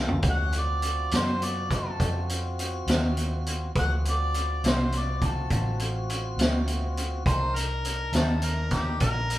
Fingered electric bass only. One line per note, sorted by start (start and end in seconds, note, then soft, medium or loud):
0.00 0.21 C2 medium
0.23 1.09 D2 medium
1.12 1.98 F#2 medium
2.00 2.85 F2 medium
2.87 3.72 D#2 medium
3.75 4.60 D2 medium
4.64 5.49 C2 medium
5.51 6.36 A1 medium
6.37 7.23 D2 medium
7.26 8.11 C2 medium
8.12 8.98 D#2 medium
9.00 9.39 A#1 medium